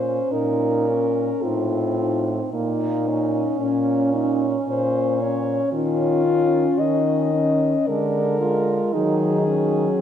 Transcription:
0, 0, Header, 1, 5, 480
1, 0, Start_track
1, 0, Key_signature, -5, "minor"
1, 0, Tempo, 1104972
1, 1103, Time_signature, 3, 2, 24, 8
1, 1103, Tempo, 1077199
1, 2063, Tempo, 1061947
1, 4467, End_track
2, 0, Start_track
2, 0, Title_t, "French horn"
2, 0, Program_c, 0, 60
2, 0, Note_on_c, 0, 72, 67
2, 140, Note_on_c, 0, 70, 66
2, 146, Note_off_c, 0, 72, 0
2, 619, Note_on_c, 0, 65, 59
2, 625, Note_off_c, 0, 70, 0
2, 1018, Note_off_c, 0, 65, 0
2, 1092, Note_on_c, 0, 63, 70
2, 1566, Note_off_c, 0, 63, 0
2, 1573, Note_on_c, 0, 61, 61
2, 1816, Note_on_c, 0, 63, 57
2, 1822, Note_off_c, 0, 61, 0
2, 1975, Note_off_c, 0, 63, 0
2, 2058, Note_on_c, 0, 72, 66
2, 2296, Note_on_c, 0, 73, 62
2, 2303, Note_off_c, 0, 72, 0
2, 2524, Note_off_c, 0, 73, 0
2, 2527, Note_on_c, 0, 65, 92
2, 3011, Note_on_c, 0, 75, 68
2, 3017, Note_off_c, 0, 65, 0
2, 3500, Note_on_c, 0, 70, 81
2, 3507, Note_off_c, 0, 75, 0
2, 3983, Note_off_c, 0, 70, 0
2, 3985, Note_on_c, 0, 68, 78
2, 4467, Note_off_c, 0, 68, 0
2, 4467, End_track
3, 0, Start_track
3, 0, Title_t, "French horn"
3, 0, Program_c, 1, 60
3, 0, Note_on_c, 1, 61, 40
3, 377, Note_off_c, 1, 61, 0
3, 387, Note_on_c, 1, 61, 40
3, 624, Note_off_c, 1, 61, 0
3, 627, Note_on_c, 1, 63, 41
3, 861, Note_off_c, 1, 63, 0
3, 867, Note_on_c, 1, 63, 37
3, 1099, Note_off_c, 1, 63, 0
3, 1341, Note_on_c, 1, 61, 44
3, 1812, Note_off_c, 1, 61, 0
3, 1821, Note_on_c, 1, 61, 48
3, 2289, Note_off_c, 1, 61, 0
3, 2296, Note_on_c, 1, 61, 41
3, 2528, Note_off_c, 1, 61, 0
3, 2535, Note_on_c, 1, 61, 45
3, 2767, Note_off_c, 1, 61, 0
3, 2771, Note_on_c, 1, 61, 43
3, 3248, Note_off_c, 1, 61, 0
3, 3262, Note_on_c, 1, 61, 48
3, 3499, Note_off_c, 1, 61, 0
3, 3504, Note_on_c, 1, 56, 46
3, 3740, Note_off_c, 1, 56, 0
3, 3744, Note_on_c, 1, 56, 45
3, 3979, Note_off_c, 1, 56, 0
3, 3988, Note_on_c, 1, 54, 50
3, 4220, Note_off_c, 1, 54, 0
3, 4224, Note_on_c, 1, 54, 54
3, 4467, Note_off_c, 1, 54, 0
3, 4467, End_track
4, 0, Start_track
4, 0, Title_t, "French horn"
4, 0, Program_c, 2, 60
4, 0, Note_on_c, 2, 61, 41
4, 137, Note_on_c, 2, 63, 49
4, 144, Note_off_c, 2, 61, 0
4, 386, Note_on_c, 2, 61, 46
4, 392, Note_off_c, 2, 63, 0
4, 624, Note_on_c, 2, 60, 46
4, 631, Note_off_c, 2, 61, 0
4, 1098, Note_off_c, 2, 60, 0
4, 1101, Note_on_c, 2, 58, 44
4, 1344, Note_on_c, 2, 61, 49
4, 1351, Note_off_c, 2, 58, 0
4, 3378, Note_off_c, 2, 61, 0
4, 3507, Note_on_c, 2, 62, 54
4, 3730, Note_off_c, 2, 62, 0
4, 3739, Note_on_c, 2, 65, 58
4, 3979, Note_on_c, 2, 63, 58
4, 3986, Note_off_c, 2, 65, 0
4, 4217, Note_off_c, 2, 63, 0
4, 4220, Note_on_c, 2, 61, 53
4, 4464, Note_off_c, 2, 61, 0
4, 4467, End_track
5, 0, Start_track
5, 0, Title_t, "French horn"
5, 0, Program_c, 3, 60
5, 0, Note_on_c, 3, 46, 48
5, 86, Note_off_c, 3, 46, 0
5, 141, Note_on_c, 3, 46, 52
5, 570, Note_off_c, 3, 46, 0
5, 623, Note_on_c, 3, 45, 49
5, 1044, Note_off_c, 3, 45, 0
5, 1100, Note_on_c, 3, 46, 51
5, 1523, Note_off_c, 3, 46, 0
5, 1579, Note_on_c, 3, 46, 55
5, 2005, Note_off_c, 3, 46, 0
5, 2058, Note_on_c, 3, 46, 51
5, 2476, Note_off_c, 3, 46, 0
5, 2532, Note_on_c, 3, 51, 58
5, 2955, Note_off_c, 3, 51, 0
5, 3011, Note_on_c, 3, 51, 60
5, 3443, Note_off_c, 3, 51, 0
5, 3501, Note_on_c, 3, 50, 52
5, 3927, Note_off_c, 3, 50, 0
5, 3984, Note_on_c, 3, 51, 62
5, 4405, Note_off_c, 3, 51, 0
5, 4467, End_track
0, 0, End_of_file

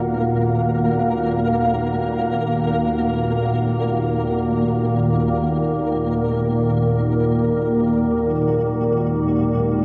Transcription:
0, 0, Header, 1, 4, 480
1, 0, Start_track
1, 0, Key_signature, -6, "minor"
1, 0, Tempo, 500000
1, 9455, End_track
2, 0, Start_track
2, 0, Title_t, "Ambient pad"
2, 0, Program_c, 0, 92
2, 0, Note_on_c, 0, 63, 78
2, 0, Note_on_c, 0, 70, 61
2, 0, Note_on_c, 0, 77, 75
2, 0, Note_on_c, 0, 78, 69
2, 7618, Note_on_c, 0, 56, 85
2, 9455, Note_off_c, 0, 56, 0
2, 9455, Note_off_c, 0, 63, 0
2, 9455, Note_off_c, 0, 70, 0
2, 9455, Note_off_c, 0, 77, 0
2, 9455, Note_off_c, 0, 78, 0
2, 9455, End_track
3, 0, Start_track
3, 0, Title_t, "Synth texture"
3, 0, Program_c, 1, 99
3, 0, Note_on_c, 1, 58, 70
3, 0, Note_on_c, 1, 70, 68
3, 7599, Note_on_c, 1, 54, 74
3, 7608, Note_on_c, 1, 66, 73
3, 7621, Note_off_c, 1, 70, 0
3, 7624, Note_off_c, 1, 58, 0
3, 9455, Note_off_c, 1, 54, 0
3, 9455, Note_off_c, 1, 66, 0
3, 9455, End_track
4, 0, Start_track
4, 0, Title_t, "Synth drone"
4, 0, Program_c, 2, 95
4, 0, Note_on_c, 2, 39, 57
4, 0, Note_on_c, 2, 46, 66
4, 9455, Note_off_c, 2, 39, 0
4, 9455, Note_off_c, 2, 46, 0
4, 9455, End_track
0, 0, End_of_file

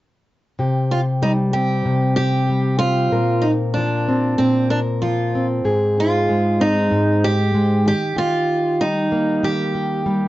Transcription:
0, 0, Header, 1, 3, 480
1, 0, Start_track
1, 0, Key_signature, -3, "minor"
1, 0, Tempo, 632244
1, 443, Time_signature, 4, 2, 24, 8
1, 7805, End_track
2, 0, Start_track
2, 0, Title_t, "Steel-string acoustic guitar"
2, 0, Program_c, 0, 25
2, 693, Note_on_c, 0, 65, 68
2, 757, Note_off_c, 0, 65, 0
2, 931, Note_on_c, 0, 63, 66
2, 996, Note_off_c, 0, 63, 0
2, 1164, Note_on_c, 0, 67, 75
2, 1631, Note_off_c, 0, 67, 0
2, 1640, Note_on_c, 0, 67, 78
2, 2112, Note_off_c, 0, 67, 0
2, 2115, Note_on_c, 0, 65, 83
2, 2593, Note_on_c, 0, 63, 66
2, 2616, Note_off_c, 0, 65, 0
2, 2660, Note_off_c, 0, 63, 0
2, 2836, Note_on_c, 0, 62, 65
2, 3292, Note_off_c, 0, 62, 0
2, 3325, Note_on_c, 0, 60, 68
2, 3567, Note_off_c, 0, 60, 0
2, 3570, Note_on_c, 0, 62, 65
2, 3635, Note_off_c, 0, 62, 0
2, 3809, Note_on_c, 0, 65, 55
2, 4144, Note_off_c, 0, 65, 0
2, 4556, Note_on_c, 0, 65, 78
2, 5020, Note_on_c, 0, 63, 71
2, 5036, Note_off_c, 0, 65, 0
2, 5497, Note_on_c, 0, 67, 91
2, 5507, Note_off_c, 0, 63, 0
2, 5970, Note_off_c, 0, 67, 0
2, 5979, Note_on_c, 0, 67, 89
2, 6208, Note_off_c, 0, 67, 0
2, 6211, Note_on_c, 0, 65, 85
2, 6688, Note_on_c, 0, 63, 68
2, 6701, Note_off_c, 0, 65, 0
2, 7170, Note_on_c, 0, 67, 70
2, 7178, Note_off_c, 0, 63, 0
2, 7805, Note_off_c, 0, 67, 0
2, 7805, End_track
3, 0, Start_track
3, 0, Title_t, "Steel-string acoustic guitar"
3, 0, Program_c, 1, 25
3, 445, Note_on_c, 1, 48, 67
3, 451, Note_on_c, 1, 67, 49
3, 929, Note_on_c, 1, 55, 52
3, 1177, Note_on_c, 1, 60, 42
3, 1399, Note_off_c, 1, 48, 0
3, 1408, Note_on_c, 1, 48, 67
3, 1643, Note_off_c, 1, 67, 0
3, 1652, Note_on_c, 1, 67, 51
3, 1884, Note_off_c, 1, 55, 0
3, 1894, Note_on_c, 1, 55, 58
3, 2124, Note_off_c, 1, 60, 0
3, 2127, Note_on_c, 1, 60, 43
3, 2366, Note_off_c, 1, 48, 0
3, 2369, Note_on_c, 1, 46, 69
3, 2370, Note_off_c, 1, 67, 0
3, 2373, Note_on_c, 1, 70, 52
3, 2419, Note_off_c, 1, 55, 0
3, 2862, Note_on_c, 1, 53, 52
3, 3096, Note_off_c, 1, 60, 0
3, 3099, Note_on_c, 1, 60, 42
3, 3323, Note_off_c, 1, 46, 0
3, 3332, Note_on_c, 1, 46, 66
3, 3563, Note_off_c, 1, 70, 0
3, 3572, Note_on_c, 1, 70, 46
3, 3808, Note_off_c, 1, 53, 0
3, 3817, Note_on_c, 1, 53, 53
3, 4061, Note_off_c, 1, 60, 0
3, 4064, Note_on_c, 1, 60, 47
3, 4285, Note_off_c, 1, 46, 0
3, 4288, Note_on_c, 1, 44, 69
3, 4289, Note_off_c, 1, 70, 0
3, 4292, Note_on_c, 1, 68, 59
3, 4340, Note_off_c, 1, 53, 0
3, 4539, Note_on_c, 1, 63, 50
3, 4778, Note_on_c, 1, 56, 56
3, 5009, Note_off_c, 1, 60, 0
3, 5012, Note_on_c, 1, 60, 44
3, 5239, Note_off_c, 1, 44, 0
3, 5248, Note_on_c, 1, 44, 67
3, 5489, Note_off_c, 1, 68, 0
3, 5717, Note_off_c, 1, 56, 0
3, 5726, Note_on_c, 1, 56, 57
3, 5963, Note_on_c, 1, 51, 66
3, 6014, Note_off_c, 1, 44, 0
3, 6014, Note_off_c, 1, 56, 0
3, 6016, Note_off_c, 1, 60, 0
3, 6193, Note_off_c, 1, 51, 0
3, 6196, Note_on_c, 1, 51, 68
3, 6200, Note_on_c, 1, 67, 57
3, 6686, Note_on_c, 1, 55, 53
3, 6924, Note_on_c, 1, 58, 45
3, 7157, Note_off_c, 1, 51, 0
3, 7160, Note_on_c, 1, 51, 70
3, 7196, Note_off_c, 1, 63, 0
3, 7397, Note_off_c, 1, 67, 0
3, 7400, Note_on_c, 1, 67, 53
3, 7634, Note_off_c, 1, 55, 0
3, 7637, Note_on_c, 1, 55, 59
3, 7805, Note_off_c, 1, 51, 0
3, 7805, Note_off_c, 1, 55, 0
3, 7805, Note_off_c, 1, 58, 0
3, 7805, Note_off_c, 1, 67, 0
3, 7805, End_track
0, 0, End_of_file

